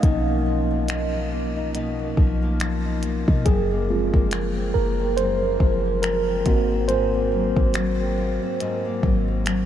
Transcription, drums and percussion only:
0.03 kick, closed hi-hat
0.88 finger snap, closed hi-hat
1.75 closed hi-hat
2.17 kick
2.60 finger snap, closed hi-hat
3.03 closed hi-hat
3.28 kick
3.46 kick, closed hi-hat
4.14 kick
4.31 finger snap, closed hi-hat
5.18 closed hi-hat
5.60 kick
6.03 finger snap, closed hi-hat
6.46 kick, closed hi-hat
6.89 closed hi-hat
7.56 kick
7.74 finger snap, closed hi-hat
8.60 closed hi-hat
9.03 kick
9.46 finger snap, closed hi-hat

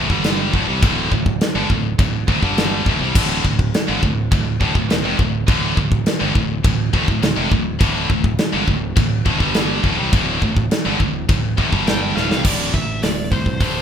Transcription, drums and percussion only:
0.10 kick
0.24 snare, china
0.54 kick
0.82 kick, china
1.12 kick
1.26 kick
1.41 snare, china
1.70 kick
1.99 kick, china
2.28 kick
2.43 kick
2.58 snare, china
2.86 kick
3.15 kick, china, crash
3.45 kick
3.59 kick
3.74 snare, china
4.03 kick
4.32 kick, china
4.61 kick
4.75 kick
4.90 snare, china
5.19 kick
5.48 kick, china
5.77 kick
5.92 kick
6.06 snare, china
6.35 kick
6.64 kick, china
6.94 kick
7.08 kick
7.23 snare, china
7.52 kick
7.81 kick, china
8.10 kick
8.24 kick
8.38 snare, china
8.68 kick
8.97 kick, china
9.26 kick
9.40 kick
9.54 snare, china
9.84 kick
10.13 kick, china
10.42 kick
10.57 kick
10.71 snare, china
11.00 kick
11.29 kick, china
11.58 kick
11.73 kick
11.87 snare, china
12.17 snare
12.31 snare
12.44 kick, crash
12.74 kick
13.03 snare, open hi-hat
13.32 kick
13.46 kick
13.60 kick, open hi-hat

